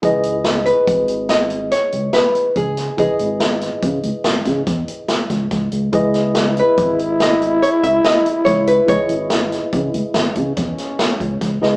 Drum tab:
HH |xxxxxxxxxxxxxx|xxxxxxxxxxxxxx|xxxxxxxxxxxxxx|xxxxxxxxxxxxx-|
SD |--o---o-o-o--o|--oo--ooo-ooo-|-oo---o---o-o-|--oo--o-ooo-oo|
BD |o---o-------o-|o---o--oo--oo-|o---o-------o-|o---o--oo--oo-|